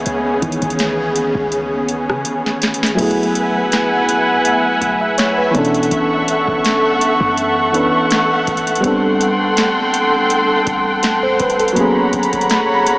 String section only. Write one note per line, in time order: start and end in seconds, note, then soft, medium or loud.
0.00 2.94 C#3 medium
0.00 2.94 B3 medium
0.00 2.94 C#4 medium
0.00 2.94 G#4 medium
2.98 5.52 B4 medium
2.98 8.80 E5 medium
2.98 5.52 F#5 medium
2.98 5.52 G#5 medium
5.55 8.80 A4 medium
5.55 11.73 F#5 medium
5.55 8.80 C#6 loud
8.84 11.73 A4 medium
8.84 11.73 G5 medium
8.84 11.73 C6 medium
11.76 12.98 C#5 medium
11.76 12.98 F#5 medium
11.76 12.98 A#5 medium
11.76 12.98 B5 medium